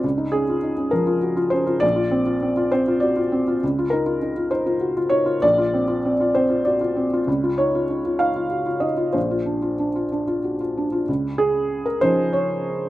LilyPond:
\new Staff \with { instrumentName = "Felt piano" } { \time 6/8 \key des \major \tempo 4. = 65 << { r8 aes'4 bes'4 c''8 | d''4. c''8 d''4 | r8 bes'4 c''4 des''8 | d''4. c''8 d''4 |
r8 des''4 f''4 ees''8 | c''4. r4. | r8 aes'8. bes'16 c''8 des''4 | } \\ { des,16 ees'16 des'16 f'16 ees'16 des'16 f16 f'16 ges'16 f'16 des'16 f'16 | bes,,16 f'16 c'16 f'16 c'16 f'16 c'16 f'16 ges'16 f'16 c'16 f'16 | des,16 f'16 ees'16 f'16 ees'16 f'16 ees'16 f'16 ges'16 f'16 ees'16 f'16 | bes,,16 f'16 c'16 f'16 c'16 f'16 c'16 f'16 ges'16 f'16 c'16 f'16 |
des,16 f'16 ees'16 f'16 ees'16 f'16 ees'16 f'16 ges'16 f'16 ees'16 f'16 | bes,,16 f'16 d'16 f'16 d'16 f'16 d'16 f'16 ges'16 f'16 d'16 f'16 | des,4. <f des' ees'>4. | } >> }